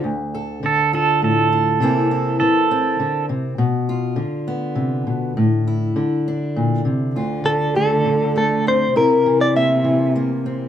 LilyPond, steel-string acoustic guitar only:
\new Staff \with { instrumentName = "Steel-string acoustic guitar" } { \clef bass \time 3/4 \key d \minor \tempo 4 = 101 << { r8 a'4 f'4 f'8 | <e bes c' e'>8 e'4 c'4. | r8 f'4 b4. | r8 e'4 d'4. |
f'4 a4 a8 c'8 | e'4 bes4 bes8 c'8 | } \\ { <d, d>4 d4 a,4 | c4 e4 d8 c8 | b,4 d4 c8 b,8 | a,4 d4 bes,8 c8 |
d,8 d4 d4. | c8 e4 e4. | } >> }